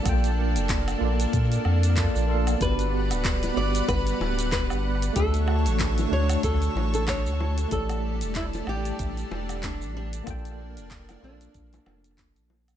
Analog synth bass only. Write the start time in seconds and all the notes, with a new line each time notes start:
0.05 A#1
0.56 F1
1.01 A#1
1.33 A#2
1.66 F2
2.16 A#1
2.61 G1
3.11 D1
3.57 G1
3.89 G1
4.20 D1
4.70 G1
5.16 D2
5.66 A1
6.12 D2
6.44 D2
6.75 A1
7.26 D2
7.72 A1
8.22 E1
8.67 A1
9.00 A1
9.31 E1
9.82 A1
10.27 A#1
10.77 F1
11.23 A#1
11.55 A#1
11.86 F1
12.37 A#1